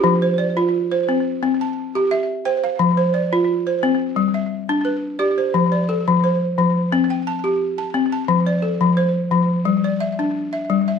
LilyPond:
\new Staff \with { instrumentName = "Balafon" } { \time 4/4 \key f \lydian \tempo 4 = 87 << { r16 c''16 d''8. c''8. r16 a''8. e''8 g''16 f''16~ | f''16 c''16 d''8. c''8. r16 e''8. b'8 d''16 c''16~ | c''16 d''16 a'8 c''8. r8 g''16 a''8. a''8 a''16~ | a''16 d''16 a'8 c''8. r8 d''16 e''8. e''8 e''16 | } \\ { <f g'>8 r16 f'8 r16 c'8 c'8 r16 g'8 r16 c''8 | f8 r16 f'8 r16 c'8 g8 r16 d'8 r16 g'8 | f8 r16 f8 r16 f8 c'8 r16 g'8 r16 c'8 | f8 r16 f8 r16 f8 g8 r16 d'8 r16 g8 | } >> }